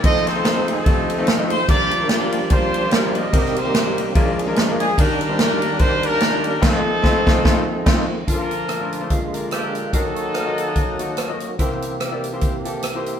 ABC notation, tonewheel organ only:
X:1
M:4/4
L:1/8
Q:"Swing" 1/4=146
K:Bb
V:1 name="Tonewheel organ"
[F,A,CE_A=A]8 | [F,G,B,DG]8 | [E,G,B,CG]4 [F,_A,B,_D=D_A]4 | [E,G,B,DFG]8 |
[E,F,A,CF]8 | [D,F,B,F]4 [D,_A,B,F]4 | [E,_G,B,F_G]8 | [D,=E,B,CG]8 |]